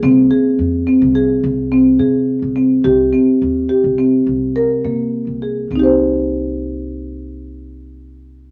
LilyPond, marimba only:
\new Staff \with { instrumentName = "Marimba" } { \time 5/4 \key c \minor \tempo 4 = 106 c'8 aes'4 c'8 aes'4 c'8 aes'4 c'8 | g'8 c'4 g'8 c'4 bes'8 bes4 aes'8 | <c' ees' g' c''>1~ <c' ees' g' c''>4 | }